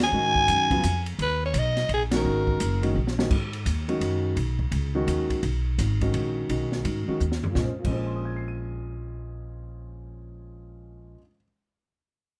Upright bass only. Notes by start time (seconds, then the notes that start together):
Already playing: D#2
0.12 G#2
0.48 F#2
0.84 F2
1.19 D#2
1.54 B1
1.89 A#1
2.25 G#1
2.61 F#1
2.96 A#1
3.30 G#2
3.66 D#2
4.00 F#2
4.36 B1
4.71 C#2
5.07 D#2
5.43 B1
5.78 G#1
6.14 A#1
6.49 B1
6.84 G#2
7.08 muted upright bass stroke
7.20 D#2
7.55 A#1
7.85 A#1